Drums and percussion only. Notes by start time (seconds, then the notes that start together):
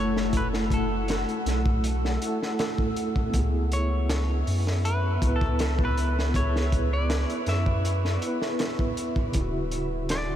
0.17 snare
0.33 kick, closed hi-hat
0.54 snare
0.70 kick, closed hi-hat
1.08 snare, closed hi-hat
1.29 closed hi-hat
1.46 snare, closed hi-hat
1.66 kick
1.84 closed hi-hat
2.05 snare
2.22 closed hi-hat
2.43 snare
2.59 snare, closed hi-hat
2.78 kick
2.96 closed hi-hat
3.16 kick
3.34 kick, closed hi-hat
3.72 closed hi-hat
4.09 snare, closed hi-hat
4.47 open hi-hat
4.67 snare
4.85 closed hi-hat
5.22 kick, closed hi-hat
5.41 kick
5.59 snare, closed hi-hat
5.79 kick
5.97 closed hi-hat
6.19 snare
6.34 kick, closed hi-hat
6.56 snare
6.72 kick, closed hi-hat
7.10 snare, closed hi-hat
7.30 closed hi-hat
7.46 snare, closed hi-hat
7.66 kick
7.85 closed hi-hat
8.05 snare
8.22 closed hi-hat
8.42 snare
8.59 snare, closed hi-hat
8.79 kick
8.97 closed hi-hat
9.16 kick
9.33 kick, closed hi-hat
9.71 closed hi-hat
10.09 snare, closed hi-hat